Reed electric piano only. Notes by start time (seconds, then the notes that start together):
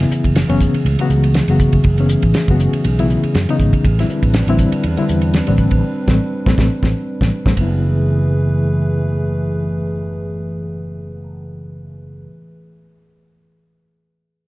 0.00 C#3 F#3 B3 E4
0.48 C#3 F#3 B3 C#4
1.00 C#3 F#3 B3 F#4
1.49 C#3 F#3 B3 F#4
1.99 C#3 F#3 B3 C#4
2.49 C#3 F#3 B3 F#4
2.99 C#3 F#3 B3 E4
3.49 C#3 F#3 B3 D#4
3.99 D3 G3 C4 E4
4.48 D3 G3 C4 E4
4.97 D3 G3 C4 E4
5.47 D3 G3 C4 D4
6.08 G3 A3 C4
6.47 G3 A3 C4
6.58 G3 A3 C4
6.83 G3 A3 C4
7.21 G3 A3 C4
7.46 G3 A3 C4
7.56 C#3 F#3 B3
7.61 E4